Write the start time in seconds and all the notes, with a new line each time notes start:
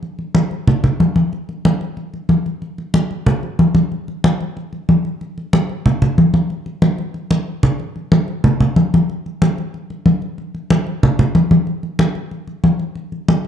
0.03 high conga
0.19 high conga
0.35 high conga
0.51 high conga
0.67 high conga, low conga
0.84 high conga, low conga
1.00 high conga
1.16 high conga
1.33 high conga
1.49 high conga
1.65 high conga
1.81 high conga
1.97 high conga
2.14 high conga
2.29 high conga
2.46 high conga
2.62 high conga
2.78 high conga
2.94 high conga
3.11 high conga
3.26 high conga, low conga
3.43 high conga
3.59 high conga
3.75 high conga
3.92 high conga
4.08 high conga
4.24 high conga
4.41 high conga
4.57 high conga
4.73 high conga
4.89 high conga
5.05 high conga
5.21 high conga
5.38 high conga
5.53 high conga
5.69 high conga
5.86 high conga, low conga
6.02 high conga, low conga
6.18 high conga
6.34 high conga
6.50 high conga
6.66 high conga
6.82 high conga
6.98 high conga
7.14 high conga
7.31 high conga
7.63 low conga
7.80 high conga
7.96 high conga
8.12 high conga
8.28 high conga
8.44 high conga, low conga
8.60 high conga, low conga
8.76 high conga
8.94 high conga
9.10 high conga
9.26 high conga
9.42 high conga
9.58 high conga
9.74 high conga
9.90 high conga
10.06 high conga
10.22 high conga
10.38 high conga
10.55 high conga
10.70 high conga
10.87 high conga
11.03 high conga, low conga
11.19 high conga, low conga
11.35 high conga
11.51 high conga
11.67 high conga
11.83 high conga
11.99 high conga
12.15 high conga
12.31 high conga
12.48 high conga
12.64 high conga
12.80 high conga
12.95 high conga
13.12 high conga
13.29 high conga